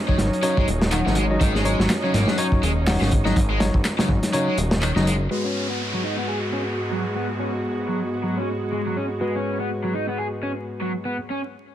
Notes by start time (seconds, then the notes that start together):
Already playing: C#4 D#4 F#4
0.08 C#3 F#3 D#4 C#5, kick
0.18 G#1, snare, closed hi-hat
0.33 closed hi-hat
0.43 C#3 F#3 D#4 C#5, closed hi-hat
0.57 G#3, kick
0.67 D#1, closed hi-hat
0.81 snare
0.91 D#3 F#3 D#4 F#5, clap, closed hi-hat
1.06 G#1 C#3, snare
1.15 G#3, closed hi-hat
1.31 F#3 D#4 D#5
1.41 G#1 D#3, kick, closed hi-hat
1.55 G#3, snare
1.65 F#3 D#4 C#5, closed hi-hat
1.79 G#1 F#3, snare
1.89 snare, clap, closed hi-hat
2.03 C#3 F#3 D#4 C#5
2.14 G#1 A#3, snare, closed hi-hat
2.28 F#3, snare
2.38 F#3 D#4 C#5, closed hi-hat
2.52 kick
2.63 D#1 G#3, closed hi-hat
2.87 F#3 D#4 F#5, snare, clap, open hi-hat
3.01 G#1 C#3, snare
3.11 kick, closed hi-hat
3.25 F#3 D#4 D#5, snare
3.36 G#1, kick, closed hi-hat
3.50 G#3
3.60 F#3 D#4 C#5, snare, closed hi-hat
3.74 G#1, kick
3.84 snare, clap, closed hi-hat
3.99 C#3 F#3 D#4 C#5, snare, closed hi-hat
4.09 G#1, kick
4.23 snare, closed hi-hat
4.33 C#3 F#3 D#4 C#5, closed hi-hat
4.48 G#3
4.58 D#1, closed hi-hat
4.71 snare
4.82 D#3, clap, closed hi-hat
4.96 F#1 C#3 F#3 D#4 D#5, snare
5.06 G#3, closed hi-hat
5.31 G#2 G#3 B3 F#4 B4, downlifter
5.44 C#4
5.69 B3
5.94 F#3
6.04 D#4
6.18 B3
6.29 G#4
6.53 C#4
6.92 F#3
7.16 B3
7.40 C#4
7.89 F#3
8.24 F#3
8.37 C#4
8.72 G#3
8.86 F#3
8.96 C#4
9.21 G#3 F#4 B4
9.35 C#4
9.60 B3
9.84 F#3
9.94 D#4
10.08 B3
10.18 G#4
10.43 C#4
10.82 F#3
11.05 B3
11.30 C#4